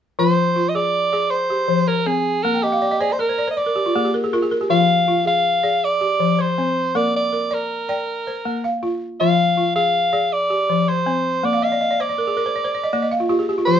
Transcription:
0.19 F3 F4 C5
0.56 F4
0.69 D#5
0.75 G#4 D5
1.13 G#4 D5
1.31 C5
1.50 G4
1.68 F3
1.88 A#4 C5
2.06 C4 G#4
2.43 A#3 A#4
2.54 G5
2.63 G4 D#5
2.72 F5
2.82 D5
2.91 D#5
3.00 G#4 C5 D5
3.10 C5 D5
3.19 A#4
3.29 C5
3.38 D5
3.47 C5 D#5
3.57 D5
3.66 A#4
3.76 G4
3.86 F4
3.95 A#3 G#4
4.05 G4
4.14 A#4
4.24 G#4
4.33 F4 A#4
4.43 G#4
4.51 A#4
4.61 G4
4.70 F3 F4 F5
5.08 F4
5.25 G#4 F5
5.63 G#4 D5
5.84 D5
6.01 G4
6.20 F3
6.39 C5
6.58 C4
6.95 A#3 A#4 D5
7.16 D5
7.33 A#4
7.51 A#4 D5
7.89 D5 G5
8.27 C5
8.45 A#3
8.64 F5
8.83 F4
9.20 F3 F4 F5
9.57 F4
9.76 G#4 F5
10.13 G#4 D5
10.33 D5
10.50 G4
10.69 F3
10.88 C5
11.06 C4
11.43 A#3 D5
11.53 F5
11.62 D#5 F5
11.72 D5
11.81 D#5
11.91 D5
12.00 C5 D5
12.09 D5
12.18 A#4
12.27 G#4
12.37 A#4 D5
12.46 C5
12.56 D5
12.64 C5
12.75 D5
12.84 D#5
12.93 A#3 D5
13.02 D#5
13.11 F5
13.20 F4
13.29 F4 G4
13.39 G#4
13.49 G4
13.58 F4
13.66 F3 F4 C5

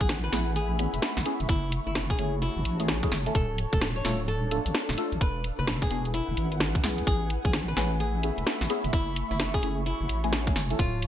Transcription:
Already playing: A3 E4 B4 E5 F#5 G#5 B5
0.00 A1 G#4, kick
0.09 snare, closed hi-hat
0.24 B4
0.32 A1 B3 C#4 E4 G#4, snare, closed hi-hat
0.49 C#6
0.56 G#4, closed hi-hat
0.79 B3 C#4 E4 G#4, closed hi-hat
0.94 E1, closed hi-hat
1.02 snare, closed hi-hat
1.17 A1, snare
1.26 B3 C#4 E4 G#4, closed hi-hat
1.40 E1, closed hi-hat
1.49 F#1 E4 F#4, kick, closed hi-hat
1.72 closed hi-hat
1.87 F#1 E4 C#5
1.95 snare, closed hi-hat
2.10 G#4 A5, kick
2.19 F#1 A3 C#4 E4 G#4, closed hi-hat
2.42 E4, closed hi-hat
2.56 F#1
2.65 A1, closed hi-hat
2.80 A3 C#4 E4 G#4, closed hi-hat
2.88 snare, closed hi-hat
3.03 A3 C#4 E4 G#4, kick
3.12 F#1, snare, closed hi-hat
3.26 A3 C#4 E4 A4, closed hi-hat
3.35 D1 D4 A4, kick, closed hi-hat
3.58 closed hi-hat
3.73 D1 A4, kick
3.78 A4, snare, closed hi-hat
3.96 C#5
4.05 D1 A3 D4 F4 A4, snare, closed hi-hat
4.28 A4, closed hi-hat
4.51 A3 D4 F4 A4, closed hi-hat
4.66 A1, closed hi-hat
4.75 snare, closed hi-hat
4.89 D1, snare
4.98 A3 D4 F4 A4, closed hi-hat
5.12 A1, closed hi-hat
5.21 E1 E4 B4, kick, closed hi-hat
5.40 F#5
5.44 closed hi-hat
5.59 E1 B4
5.67 snare, closed hi-hat
5.82 G#4, kick
5.91 E1 B3 D4 F#4 G#4, closed hi-hat
6.05 G#5, closed hi-hat
6.14 E4, closed hi-hat
6.29 E1
6.37 G#1, closed hi-hat
6.52 closed hi-hat
6.60 snare, closed hi-hat
6.75 kick
6.84 B1 B3 C#4 E4 G#4, snare, closed hi-hat
6.98 closed hi-hat
7.07 A1 A3 G#4, kick, closed hi-hat
7.30 closed hi-hat
7.39 E5
7.45 A1 G#4 B5, kick
7.53 snare, closed hi-hat
7.68 B4
7.77 A1 B3 C#4 E4 G#4, snare, closed hi-hat
7.87 C#6
8.00 G#4, closed hi-hat
8.23 B3 C#4 E4 G#4, closed hi-hat
8.38 E1, closed hi-hat
8.47 snare, closed hi-hat
8.61 A1, snare
8.70 B3 C#4 E4 G#4, closed hi-hat
8.84 E1, closed hi-hat
8.93 F#1 E4 F#4, kick, closed hi-hat
9.16 closed hi-hat
9.31 F#1 E4
9.40 C#5, snare, closed hi-hat
9.54 G#4, kick
9.63 F#1 A3 C#4 E4 G#4, closed hi-hat
9.79 A5
9.86 E4, closed hi-hat
10.01 F#1
10.09 A1, closed hi-hat
10.24 A3 C#4 E4 G#4, closed hi-hat
10.33 snare, closed hi-hat
10.47 A3 C#4 E4 G#4, kick
10.56 F#1, snare, closed hi-hat
10.70 A3 C#4 E4 A4, closed hi-hat
10.79 D1 D4 F4, kick, closed hi-hat
11.02 closed hi-hat

